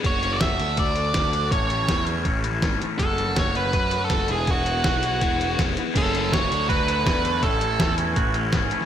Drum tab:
CC |----------------|----------------|----------------|----------------|
HH |x-x-x-x-x-x-x-x-|x-x-x-x-x-x-x-x-|x-x-x-x-x-x-x-x-|x-x-x-x-x-x-x-x-|
SD |----o-------o---|----o-------o---|----o-------o---|----o-------o---|
BD |o---o---o---o---|o---o---o---o---|o---o---o---o---|o---o---o---o---|

CC |x---------------|----------------|
HH |x-x-x-x-x-x-x-x-|x-x-x-x-x-x-x-x-|
SD |----o-------o---|----o-------o--o|
BD |o---o---o---o---|o---o---o---o---|